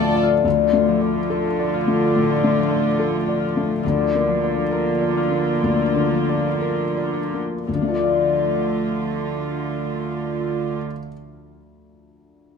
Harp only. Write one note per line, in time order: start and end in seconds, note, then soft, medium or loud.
0.00 0.44 D3 medium
0.00 0.87 F3 soft
0.00 2.85 D4 soft
0.00 0.22 F4 soft
0.00 3.92 D5 soft
0.00 3.48 F5 soft
0.00 3.70 A5 soft
0.23 1.72 F4 soft
0.45 2.13 D3 soft
0.88 2.56 F3 soft
1.31 2.97 A4 soft
1.74 3.39 F4 soft
2.14 3.82 D3 soft
2.57 4.26 F3 soft
2.98 3.87 A4 soft
3.40 5.16 F4 soft
3.83 5.61 D3 soft
4.27 6.10 F3 soft
4.71 6.59 A#4 soft
5.17 7.12 F4 soft
5.62 7.66 D3 soft
6.11 7.73 F3 soft
6.60 7.72 A#4 soft
7.13 11.03 F4 soft
7.67 11.57 D3 soft
7.74 11.57 F3 soft
7.81 10.91 D4 soft
7.88 10.98 A4 soft
7.95 11.05 D5 soft